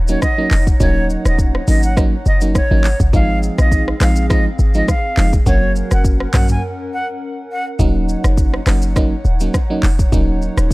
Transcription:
Already playing: 808-style bass D#1, analog synth pad D#4 C#5 F#5
0.08 fm electric piano F#3 A#3 C#4 D#4, flute C#5, shaker
0.22 flute D#5, kick, cross-stick, shaker
0.38 fm electric piano F#3 A#3 C#4 D#4
0.51 808-style bass F1, clap, open hi-hat, shaker
0.67 kick, shaker
0.80 808-style bass D#1, fm electric piano F#3 A#3 C#4 D#4, flute C#5, kick, shaker
1.10 shaker
1.25 808-style bass D#1, flute D#5, cross-stick, shaker
1.39 kick, shaker
1.55 cross-stick
1.68 808-style bass G#1, fm electric piano F#3 A#3 C#4 D#4, flute D#5, open hi-hat, shaker
1.83 flute F#5, shaker
1.96 fm electric piano F#3 A#3 C#4 D#4, kick, cross-stick, shaker
2.26 808-style bass F#1, flute D#5, shaker
2.41 fm electric piano F#3 A#3 C#4 D#4, shaker
2.55 flute C#5, kick, cross-stick, shaker
2.71 808-style bass G#1, fm electric piano F#3 A#3 C#4 D#4
2.84 clap, open hi-hat, shaker
3.00 808-style bass F#1, kick, shaker
3.13 808-style bass G#1, fm electric piano F3 G#3 C4 D#4, analog synth pad C4 G#4 F5, flute F5, kick, shaker
3.43 shaker
3.58 808-style bass A#1, flute D#5, cross-stick, shaker
3.72 kick, shaker
3.88 cross-stick
4.00 808-style bass A#1, fm electric piano F3 G#3 C4 D#4, flute F5, cross-stick, clap, open hi-hat, shaker
4.16 shaker
4.30 fm electric piano F3 G#3 C4 D#4, flute D#5, kick, cross-stick, shaker
4.59 808-style bass G#1, shaker
4.74 fm electric piano F3 G#3 C4 D#4, flute D#5, shaker
4.88 flute F5, kick, cross-stick, shaker
5.17 808-style bass F1, fm electric piano F3 G#3 C4 D#4, clap, open hi-hat, shaker
5.33 kick, shaker
5.46 808-style bass F#1, fm electric piano F#3 A#3 C#4 F#4, analog synth pad C#4 A#4 F#5, flute C#5, kick, shaker
5.76 shaker
5.91 808-style bass F#1, flute F#5, cross-stick, shaker
6.05 kick, shaker
6.20 cross-stick
6.33 808-style bass A#1, fm electric piano F#3 A#3 C#4 F#4, flute F#5, cross-stick, clap, mid tom, open hi-hat, shaker
6.49 flute G#5, mid tom, shaker
6.93 flute F#5
7.52 flute F#5
7.79 808-style bass D#1, fm electric piano F#3 A#3 C#4 D#4, analog synth pad D#4 C#5, kick, shaker
8.09 shaker
8.24 808-style bass F#1, cross-stick, shaker
8.38 kick, shaker
8.54 cross-stick
8.66 808-style bass F#1, fm electric piano F#3 A#3 C#4 D#4, cross-stick, clap, open hi-hat, shaker
8.82 shaker
8.96 fm electric piano F#3 A#3 C#4 D#4, kick, cross-stick, shaker
9.25 808-style bass D#1, shaker
9.40 fm electric piano F#3 A#3 C#4 D#4, shaker
9.54 kick, cross-stick, shaker
9.70 fm electric piano F#3 A#3 C#4 D#4
9.83 808-style bass F1, clap, open hi-hat, shaker
9.99 kick, shaker
10.12 808-style bass D#1, fm electric piano F#3 A#3 C#4 D#4, kick, shaker
10.42 shaker
10.57 808-style bass D#1, cross-stick, shaker

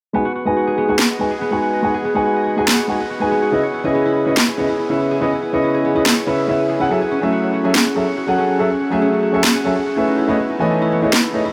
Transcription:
0.13 grand piano G#3 D#4 F#4 B4 G#5, harp B3
0.25 harp F#4
0.35 harp F#4
0.45 grand piano G#3 D#4 F#4 B4 G#5, harp D#5
0.57 harp F#4
0.67 harp G#4
0.78 harp B3
0.88 grand piano G#3 D#4 F#4 B4 G#5, harp F#4
0.99 harp F#4, snare
1.10 harp D#5
1.19 grand piano G#3 D#4 F#4 B4 G#5, harp F#4
1.31 harp G#4
1.41 harp B3
1.51 grand piano G#3 D#4 F#4 B4 G#5, harp F#4
1.62 harp F#4
1.73 harp D#5
1.82 grand piano G#3 D#4 F#4 B4 G#5, harp F#4
1.94 harp G#4
2.04 harp B3
2.14 grand piano G#3 D#4 F#4 B4 G#5, harp F#4
2.26 harp F#4
2.36 harp D#5
2.47 harp F#4
2.57 grand piano G#3 D#4 F#4 B4 G#5, harp G#4
2.68 harp B3, snare
2.79 harp F#4
2.88 grand piano G#3 D#4 F#4 B4 G#5, harp F#4
3.00 harp D#5
3.10 harp F#4
3.20 grand piano G#3 D#4 F#4 B4 G#5, harp G#4
3.31 harp B3
3.42 harp F#4
3.51 grand piano C#3 C#4 E4 B4 D#5, harp E4
3.63 harp C#5
3.74 harp E4
3.83 grand piano C#3 C#4 E4 B4 D#5, harp G#4
3.95 harp B3
4.05 harp E4
4.16 harp E4
4.26 grand piano C#3 C#4 E4 B4 D#5, harp C#5
4.37 harp E4, snare
4.48 harp G#4
4.57 grand piano C#3 C#4 E4 B4 D#5, harp B3
4.69 harp E4
4.79 harp E4
4.89 grand piano C#3 C#4 E4 B4 E5, harp C#5
5.00 harp E4
5.11 harp G#4
5.20 grand piano C#3 C#4 E4 B4 D#5, harp B3
5.32 harp E4
5.42 harp E4
5.52 grand piano C#3 C#4 E4 B4 D#5, harp C#5
5.64 harp E4
5.74 harp G#4
5.85 harp B3
5.95 grand piano C#3 C#4 E4 B4 D#5, harp E4
6.06 harp E4, snare
6.17 harp C#5
6.26 grand piano C#3 C#4 E4 B4 E5, harp C#5
6.38 harp E5
6.47 grand piano C#3 C#4 E4 B4 E5, harp B3
6.59 harp G#4
6.69 harp G#4
6.79 grand piano C#3 C#4 E4 B4 F#5, harp E4
6.89 grand piano F#3 C#4 G#4 A4 E5, harp F#4
7.01 harp G#4
7.11 harp C#4
7.21 grand piano F#3 A3 C#4 G#4 E5, harp C#4
7.33 harp F#4
7.43 harp C#5
7.54 harp F#4
7.63 grand piano F#3 C#4 G#4 A4 E5, harp G#4
7.75 harp C#4, snare
7.86 harp C#4
7.95 grand piano F#3 C#4 G#4 A4 E5, harp F#4
8.07 harp C#5
8.17 harp F#4
8.27 grand piano F#3 C#4 G#4 A4 F#5, harp G#4
8.38 harp C#4
8.49 harp C#4
8.58 grand piano F#3 C#4 G#4 A4 E5, harp F#4
8.70 harp C#5
8.81 harp F#4
8.90 grand piano F#3 A3 C#4 G#4 E5, harp G#4
9.02 harp C#4
9.13 harp C#4
9.23 harp F#4
9.33 grand piano F#3 C#4 G#4 A4 E5, harp C#5
9.44 harp F#4, snare
9.55 harp G#4
9.64 grand piano F#3 C#4 G#4 A4 E5, harp C#4
9.76 harp C#4
9.86 harp F#4
9.96 grand piano A3 E4 G#4 B4 C#5 E5, harp C#5
10.07 harp D#4
10.18 harp E4
10.28 grand piano A3 E4 G#4 B4 C#5 D#5, harp B3
10.39 harp B3
10.50 harp D#4
10.60 grand piano E3 A3 B4 C#5 D#5 G#5, harp A4
10.71 harp D#4
10.82 harp E4
10.92 harp B3
11.02 grand piano A3 E4 G#4 B4 C#5 D#5, harp B3
11.13 harp D#4, snare
11.24 harp A4
11.33 grand piano A3 E4 G#4 B4 C#5 D#5, harp D#4
11.45 harp E4

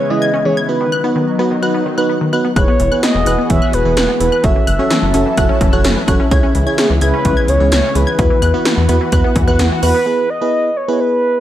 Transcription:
Already playing: analog synth pad C#3 G#3 B3 E4, soft synth lead C#5
0.10 synth pluck E3, fm electric piano G#3 C#4 E4 G#4, soft synth lead D#5
0.22 synth pluck G#6
0.34 synth pluck C#4
0.45 synth pluck E3, fm electric piano G#3 C#4 E4 G#4, soft synth lead C#5
0.57 synth pluck G#6
0.69 analog synth pad F#3 D#4, fm electric piano B3 D#4 F#4 B4, soft synth lead B4
0.81 synth pluck D#3
0.92 synth pluck F#6
1.04 synth pluck B3, fm electric piano B3 D#4 F#4 B4
1.16 synth pluck D#3
1.39 fm electric piano B3 D#4 F#4 B4, synth pluck B3
1.51 synth pluck D#3
1.63 fm electric piano B3 D#4 F#4 B4, synth pluck F#6
1.74 synth pluck B3
1.86 synth pluck D#3
1.98 fm electric piano B3 D#4 F#4 B4, synth pluck F#6
2.09 synth pluck B3
2.21 synth pluck D#3
2.33 fm electric piano B3 D#4 F#4 B4, synth pluck F#6
2.45 synth pluck B3
2.56 analog synth bass E1, analog synth pad E3 B3 F#4 G#4, fm electric piano B3 E4 G#4 B4, soft synth lead C#5, synth pluck F#6, kick, closed hi-hat
2.68 synth pluck B3
2.80 analog synth bass E1, synth pluck E3, closed hi-hat
2.92 fm electric piano B3 E4 G#4 B4, synth pluck F#6
3.03 synth pluck B3, soft synth lead D#5, snare, closed hi-hat
3.15 analog synth bass E1, synth pluck E3
3.26 analog synth bass E1, fm electric piano B3 E4 G#4 B4, synth pluck F#6, closed hi-hat
3.39 synth pluck B3
3.50 analog synth bass E1, synth pluck E3, fm electric piano B3 E4 G#4 C#5, soft synth lead E5, kick, closed hi-hat
3.62 synth pluck F#6
3.73 analog synth bass E1, soft synth lead B4, closed hi-hat
3.85 analog synth bass E1, synth pluck E3, fm electric piano B3 E4 G#4 B4
3.97 analog synth bass E1, synth pluck F#6, snare, closed hi-hat
4.09 synth pluck B3
4.20 analog synth bass E1, synth pluck E3, fm electric piano B3 E4 G#4 B4, soft synth lead B4, closed hi-hat
4.32 synth pluck F#6
4.44 analog synth bass F#1, analog synth pad F#3 C#4 E4 A4, fm electric piano C#4 F#4 A4 C#5, soft synth lead E5, kick, closed hi-hat
4.56 synth pluck E3
4.67 analog synth bass F#1, synth pluck F#6, closed hi-hat
4.79 synth pluck C#4, fm electric piano C#4 F#4 A4 C#5
4.91 synth pluck E3, snare, closed hi-hat
5.03 analog synth bass F#1
5.14 analog synth bass F#1, synth pluck C#4, fm electric piano C#4 F#4 A4 E5, closed hi-hat
5.26 synth pluck E3
5.37 analog synth bass F#1, fm electric piano C#4 F#4 A4 E5, synth pluck F#6, kick, closed hi-hat
5.49 synth pluck C#4
5.61 analog synth bass F#1, synth pluck E3, kick, closed hi-hat
5.73 analog synth bass F#1, fm electric piano C#4 F#4 A4 C#5, synth pluck F#6
5.84 analog synth bass F#1, synth pluck C#4, snare, closed hi-hat
5.96 synth pluck E3
6.08 analog synth bass F#1, fm electric piano C#4 F#4 A4 C#5, synth pluck F#6, kick, closed hi-hat
6.20 synth pluck C#4
6.31 analog synth bass C#2, analog synth pad C#3 G#3 B3, fm electric piano C#4 E4 G#4 C#5, synth pluck G#6, kick, closed hi-hat, swell
6.43 synth pluck C#4
6.55 analog synth bass C#2, synth pluck E3, closed hi-hat
6.67 fm electric piano C#4 E4 G#4 C#5, synth pluck G#6
6.78 synth pluck C#4, soft synth lead G#4, snare, closed hi-hat
6.90 analog synth bass C#2, synth pluck E3
7.01 analog synth bass C#2, fm electric piano C#4 E4 G#4 E5, soft synth lead B4, synth pluck G#6, closed hi-hat
7.14 synth pluck C#4
7.25 analog synth bass C#2, synth pluck E3, fm electric piano C#4 E4 G#4 C#5, kick, closed hi-hat
7.37 synth pluck G#6
7.48 analog synth bass C#2, soft synth lead C#5, closed hi-hat
7.60 analog synth bass C#2, synth pluck E3, fm electric piano C#4 E4 G#4 C#5
7.72 analog synth bass C#2, soft synth lead C#5, synth pluck G#6, snare, closed hi-hat
7.84 synth pluck C#4
7.95 analog synth bass C#2, synth pluck E3, fm electric piano C#4 E4 G#4 C#5, soft synth lead B4, closed hi-hat
8.07 synth pluck G#6
8.19 analog synth bass E2, analog synth pad E3 F#4 B4, fm electric piano B3 E4 F#4 B4, kick, closed hi-hat
8.30 synth pluck E3
8.42 analog synth bass E2, synth pluck F#6, closed hi-hat
8.54 synth pluck B3, fm electric piano B3 E4 F#4 B4
8.65 synth pluck E3, snare, closed hi-hat
8.78 analog synth bass E2
8.89 analog synth bass E2, synth pluck B3, fm electric piano B3 E4 F#4 B4, closed hi-hat
9.01 synth pluck E3
9.12 analog synth bass E2, fm electric piano B3 E4 F#4 B4, synth pluck F#6, kick, closed hi-hat
9.24 synth pluck B3
9.36 analog synth bass E2, synth pluck E3, kick, closed hi-hat
9.48 analog synth bass E2, fm electric piano B3 E4 F#4 B4, synth pluck F#6
9.59 analog synth bass E2, synth pluck B3, snare, closed hi-hat
9.71 synth pluck E3
9.83 analog synth bass E2, fm electric piano B3 E4 F#4 B4, soft synth lead B4, synth pluck F#6, open hi-hat
9.95 synth pluck B3
10.06 fm electric piano B3 E4 G#4 B4
10.30 soft synth lead D#5
10.41 fm electric piano B3 E4 G#4 B4
10.77 soft synth lead C#5
10.88 fm electric piano B3 E4 G#4 B4
10.93 soft synth lead C#5
11.00 soft synth lead B4

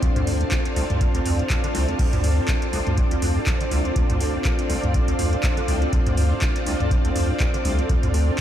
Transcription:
Already playing: string machine C4 F4 F5, ambient pad D4 A4 D5 A5
0.02 acid bass D2, kick, closed hi-hat
0.16 acid bass D2, closed hi-hat, mid tom
0.27 analog synth bass D2, mid tom, open hi-hat
0.41 acid bass A2, closed hi-hat
0.51 kick, clap, closed hi-hat
0.65 closed hi-hat
0.76 acid bass C2, analog synth bass D2, open hi-hat
0.90 analog synth bass D2, closed hi-hat, mid tom
1.01 acid bass D2, kick, closed hi-hat
1.14 acid bass D2, closed hi-hat
1.25 analog synth bass D2, acid bass F2, open hi-hat
1.39 acid bass A2, closed hi-hat
1.50 acid bass C2, kick, clap, closed hi-hat
1.64 acid bass D3, closed hi-hat
1.75 acid bass C2, analog synth bass D2, open hi-hat
1.88 acid bass D2, closed hi-hat
1.99 acid bass D2, string machine D5, kick, closed hi-hat, crash
2.13 acid bass D2, closed hi-hat, mid tom
2.24 analog synth bass D2, mid tom, open hi-hat
2.38 acid bass A2
2.48 kick, clap, closed hi-hat
2.62 closed hi-hat
2.73 acid bass C2, analog synth bass D2, ambient pad F5, open hi-hat
2.87 analog synth bass D2, closed hi-hat, mid tom
2.98 acid bass D2, kick, closed hi-hat
3.11 acid bass D2, closed hi-hat
3.22 analog synth bass D2, acid bass F2, open hi-hat
3.36 acid bass A2
3.46 acid bass C2, kick, clap, closed hi-hat
3.61 acid bass D3, closed hi-hat
3.71 acid bass C2, analog synth bass D2, open hi-hat
3.85 acid bass D2, closed hi-hat
3.96 acid bass D2, kick, closed hi-hat
4.09 acid bass D2, closed hi-hat, mid tom
4.21 analog synth bass D2, open hi-hat
4.34 acid bass A2
4.45 kick, clap, closed hi-hat
4.59 closed hi-hat
4.70 acid bass C2, analog synth bass D2, open hi-hat
4.83 analog synth bass D2, closed hi-hat, mid tom
4.94 acid bass D2, kick, closed hi-hat
5.08 acid bass D2, closed hi-hat
5.19 analog synth bass D2, acid bass F2, open hi-hat
5.33 acid bass A2, closed hi-hat
5.43 acid bass C2, kick, clap, closed hi-hat
5.57 acid bass D3, closed hi-hat
5.68 acid bass C2, analog synth bass D2, open hi-hat
5.82 acid bass D2, closed hi-hat
5.93 acid bass D2, kick, closed hi-hat
6.06 acid bass D2, closed hi-hat, mid tom
6.17 analog synth bass D2, mid tom, open hi-hat
6.31 acid bass A2
6.42 kick, clap, closed hi-hat
6.56 closed hi-hat
6.66 acid bass C2, analog synth bass D2, ambient pad A5, open hi-hat
6.80 analog synth bass D2, closed hi-hat, mid tom
6.91 acid bass D2, kick, closed hi-hat
7.05 acid bass D2, closed hi-hat
7.16 analog synth bass D2, acid bass F2, open hi-hat
7.29 acid bass A2
7.40 acid bass C2, kick, clap, closed hi-hat
7.54 acid bass D3, closed hi-hat
7.65 acid bass C2, analog synth bass D2, open hi-hat
7.79 acid bass D2, closed hi-hat
7.89 acid bass D2, kick, closed hi-hat
8.03 acid bass D2, closed hi-hat, mid tom
8.14 analog synth bass D2, open hi-hat
8.28 acid bass A2

